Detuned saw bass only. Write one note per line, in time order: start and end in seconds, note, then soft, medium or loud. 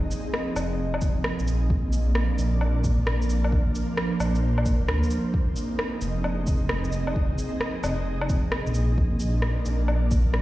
0.56 1.01 F1 medium
1.02 1.15 F1 medium
1.40 1.69 A#1 medium
1.70 2.28 A#1 medium
2.39 2.83 A#1 medium
2.84 3.74 A#1 medium
4.20 4.67 A#1 medium
4.66 4.87 F1 medium
4.88 5.02 D2 medium
6.02 6.46 F1 medium
6.47 7.37 F1 medium
7.83 8.28 F1 medium
8.30 8.43 F1 loud
8.67 8.96 A#1 medium
8.98 9.56 A#1 medium
9.66 10.10 A#1 medium
10.11 10.42 A#1 medium